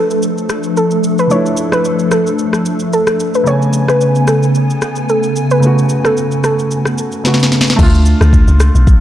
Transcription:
Already playing: F3 A3 D4 A4
0.10 shaker
0.22 shaker
0.38 shaker
0.49 cross-stick, shaker
0.63 shaker
0.77 A4, shaker
0.91 shaker
1.04 shaker
1.18 B4, shaker
1.27 F3 A3 C#5, shaker
1.32 D4 E4
1.46 shaker
1.57 shaker
1.72 B4, cross-stick, shaker
1.85 shaker
1.99 shaker
2.11 A4, cross-stick, shaker
2.27 shaker
2.39 shaker
2.53 cross-stick, shaker
2.65 shaker
2.79 shaker
2.93 A4, shaker
3.07 cross-stick, shaker
3.20 shaker
3.34 B4, shaker
3.44 C#3 A3 B3 C#5 G#5, shaker
3.48 B3 G#5
3.62 shaker
3.73 shaker
3.88 B4, cross-stick, shaker
4.01 shaker
4.15 shaker
4.27 A4, cross-stick, shaker
4.43 shaker
4.55 shaker
4.70 shaker
4.82 cross-stick, shaker
4.96 shaker
5.09 A4, shaker
5.23 shaker
5.36 shaker
5.51 B4, shaker
5.60 C#3 A3, shaker
5.64 B3 F#4
5.78 shaker
5.89 shaker
6.05 A4, cross-stick, shaker
6.17 shaker
6.31 shaker
6.44 A4, cross-stick, shaker
6.59 shaker
6.71 shaker
6.85 cross-stick, shaker
6.98 shaker
7.12 shaker
7.24 C#3 A3 B3 F#4, snare, shaker
7.34 snare
7.39 snare, shaker
7.52 snare, shaker
7.61 snare
7.67 snare, shaker
7.76 D2 A3 D4, kick, crash, shaker
7.83 F4
7.95 shaker
8.06 shaker
8.21 D2, cross-stick, shaker
8.33 kick, shaker
8.48 C#2, shaker
8.60 cross-stick, shaker
8.75 B1, shaker
8.87 kick, shaker

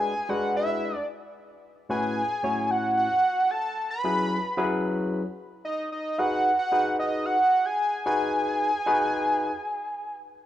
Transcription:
Already playing: G#3 D4 F#4 G#4 B4 G#5
0.29 G#3 D4 F#4 G#4 B4 F#5
0.56 E5
1.89 A2 C#4 E4 F#4 B4 G#5
2.43 A2 C#4 E4 F#4 C#5
2.71 F#5
2.97 F#5
3.51 A5
3.90 B5
4.04 F#3 C#4 E4 G#4 B4
4.57 F#3 C#4 E4 G#4 B4
5.65 D#5
5.92 D#5
6.18 D#4 F#4 G#4 B4 F#5
6.59 F#5
6.72 D#4 F#4 G#4 B4
6.99 D#5
7.26 F#5
7.66 G#5
8.06 D#4 F#4 G#4 B4 G#5
8.86 D#4 F#4 G#4 B4

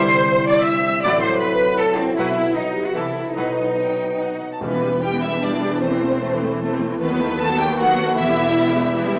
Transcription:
Already playing: C2 C3 G3 E4 G4 C5 E5 C6
0.11 C4
0.29 E4
0.48 G4 D5 D6
0.67 E4 E5 E6
0.86 C4
1.03 A1 A2 F#3 E4 D5 F#5 D6
1.22 C4 C5 C6
1.42 E4 B4 B5
1.61 F#4
1.79 E4 A4 A5
1.98 C4 C5
2.17 B1 B2 F#3 E4 F#4 B4 E5 F#5
2.36 B3
2.54 F#3 D#4 F#4 D#5
2.74 F#4 G4
2.85 F#4 F#5
2.94 C2 C3 E3 E4 A4 E5 A5
3.16 E4 A4
3.36 B1 B2 F#3 D#4 B4 D#5 F#5
3.57 F#3
3.78 F#4 G5
3.99 B4
4.20 F#4 F#5
4.41 F#3
4.52 A5
4.61 E1 E2 E3 G3 B3 B4
4.71 E3 B3
4.82 G3 E4
4.91 E3 B3
5.01 G3 G4 B4 G5
5.12 E3 B3
5.22 G3 E4 G4 E5
5.32 E3 B3
5.42 G3 D4 B4 D5
5.51 E3 B3
5.61 G3 E4
5.71 E3 B3
5.81 E3 A3 C4 C5
5.91 E3 C4
6.02 A3 E4
6.12 E3 C4
6.22 A3 A4
6.32 E3 C4
6.42 A3 E4
6.51 E3 C4
6.61 A3 A4
6.71 E3 C4
6.80 A3 E4
6.91 E3 C4
7.00 D#2 D#3 A3 B3 B4
7.10 F#3 B3
7.20 D#3 A3
7.30 F#3 B3
7.39 D#3 A3 F#4 A4 A5
7.49 F#3 B3
7.59 D#3 A3 G4 B4 G5
7.69 F#3 B3
7.78 D#3 A3 F#4 F#5
7.88 F#3 B3
7.98 D#3 A3
8.08 F#3 B3
8.17 E1 E2 E3 B3 E4 E5
8.27 G3 E4
8.37 E3 G3 B3
8.46 G3 E4
8.56 E3 B3 G4
8.66 G3 E4
8.76 E3 B3 B4
8.86 G3 E4
8.95 E3 B3 G4
9.05 G3 E4
9.15 E3 G3 B3

